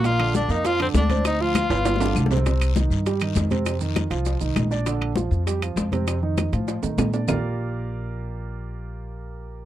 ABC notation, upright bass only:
X:1
M:4/4
L:1/8
Q:1/4=199
K:Bb
V:1 name="Upright bass" clef=bass
B,,,3 F,,3 D,,2- | D,,3 G,,,3 C,,2- | C,,3 G,,3 F,,2- | F,,3 C,,2 C,, B,,,2- |
B,,,3 F,,3 F,,2- | F,,3 A,,2 A,, B,,2 | B,,,8- | B,,,8 |]